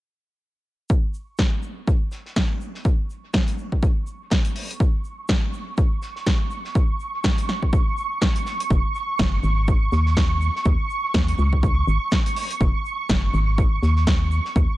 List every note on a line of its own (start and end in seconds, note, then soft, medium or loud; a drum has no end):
0.90 14.77 C#6 medium
0.90 kick loud
0.90 shaker medium
1.14 shaker medium
1.38 kick loud
1.38 snare loud
1.38 shaker medium
1.62 shaker medium
1.87 kick loud
1.87 shaker medium
2.11 snare soft
2.11 shaker medium
2.26 snare soft
2.36 kick loud
2.36 snare loud
2.36 shaker medium
2.61 shaker medium
2.75 snare medium
2.85 kick loud
2.85 shaker medium
3.10 shaker medium
3.33 kick loud
3.33 snare loud
3.33 shaker medium
3.48 closed hi-hat soft
3.58 shaker medium
3.72 kick medium
3.83 kick loud
3.83 shaker medium
4.07 shaker medium
4.30 kick loud
4.30 snare loud
4.30 shaker medium
4.45 closed hi-hat soft
4.56 open hi-hat medium
4.71 closed hi-hat soft
4.80 kick loud
4.80 shaker medium
5.04 shaker medium
5.28 kick loud
5.28 snare loud
5.28 shaker medium
5.53 shaker medium
5.77 kick loud
5.77 shaker medium
6.02 snare soft
6.02 shaker medium
6.16 snare medium
6.26 kick loud
6.26 snare loud
6.26 shaker medium
6.51 shaker medium
6.65 snare medium
6.75 kick loud
6.75 shaker medium
7.00 shaker medium
7.24 kick loud
7.24 snare loud
7.24 shaker medium
7.38 closed hi-hat soft
7.48 snare medium
7.48 shaker medium
7.62 kick medium
7.73 kick loud
7.73 shaker medium
7.97 shaker medium
8.21 kick loud
8.21 snare loud
8.21 shaker medium
8.36 closed hi-hat soft
8.46 snare loud
8.46 shaker medium
8.60 closed hi-hat soft
8.70 8.81 F#1 medium
8.70 kick loud
8.70 shaker medium
8.95 shaker medium
9.19 9.39 F#1 medium
9.19 kick loud
9.19 snare loud
9.19 shaker medium
9.43 9.88 G#1 medium
9.43 shaker medium
9.68 kick loud
9.68 shaker medium
9.92 10.50 D#2 medium
9.92 snare soft
9.92 shaker medium
10.06 snare medium
10.16 kick loud
10.16 snare loud
10.16 shaker medium
10.41 shaker medium
10.56 snare medium
10.65 10.76 D#2 loud
10.65 kick loud
10.65 shaker medium
10.90 shaker medium
11.14 11.34 D#2 medium
11.14 kick loud
11.14 snare loud
11.14 shaker medium
11.28 closed hi-hat soft
11.38 11.84 C#2 loud
11.38 shaker medium
11.53 kick medium
11.63 kick loud
11.63 shaker medium
11.87 11.98 G#1 medium
11.87 shaker medium
12.11 kick loud
12.11 snare loud
12.11 shaker medium
12.26 closed hi-hat soft
12.36 open hi-hat medium
12.51 closed hi-hat soft
12.61 12.71 F#1 medium
12.61 kick loud
12.61 shaker medium
12.85 shaker medium
13.09 13.29 F#1 medium
13.09 kick loud
13.09 snare loud
13.09 shaker medium
13.34 13.79 G#1 loud
13.34 shaker medium
13.58 kick loud
13.58 shaker medium
13.82 14.40 D#2 medium
13.82 snare soft
13.82 shaker medium
13.96 snare medium
14.07 kick loud
14.07 snare loud
14.07 shaker medium
14.31 shaker medium
14.45 snare medium
14.56 14.66 D#2 medium
14.56 kick loud
14.56 shaker medium